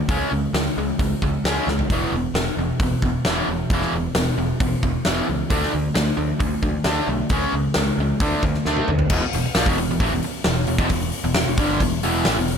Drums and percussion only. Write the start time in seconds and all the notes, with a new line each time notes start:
0.09 kick, open hi-hat
0.54 snare, open hi-hat
0.99 kick, open hi-hat
1.22 kick
1.45 snare, open hi-hat
1.68 snare
1.79 floor tom
1.90 kick, open hi-hat
2.35 snare, open hi-hat
2.79 kick, open hi-hat
3.02 kick
3.25 snare, open hi-hat
3.70 kick, open hi-hat
3.82 snare
4.15 snare, open hi-hat
4.60 kick, open hi-hat
4.83 kick
5.05 snare, open hi-hat
5.50 kick, open hi-hat
5.63 snare
5.95 snare, open hi-hat
6.40 kick, open hi-hat
6.63 kick
6.84 snare, open hi-hat
7.29 kick, open hi-hat
7.74 snare, open hi-hat
8.20 kick, open hi-hat
8.43 kick
8.54 snare
8.65 snare
8.77 high tom
8.88 mid tom
8.99 floor tom
9.10 kick, crash
9.33 open hi-hat
9.55 snare, open hi-hat
9.66 kick
9.78 open hi-hat
10.00 kick, open hi-hat
10.22 open hi-hat
10.44 snare, open hi-hat
10.67 open hi-hat
10.78 kick
10.89 kick, open hi-hat
11.12 open hi-hat
11.34 snare, open hi-hat
11.57 kick, open hi-hat
11.80 kick, open hi-hat
12.03 open hi-hat
12.25 snare, open hi-hat
12.48 open hi-hat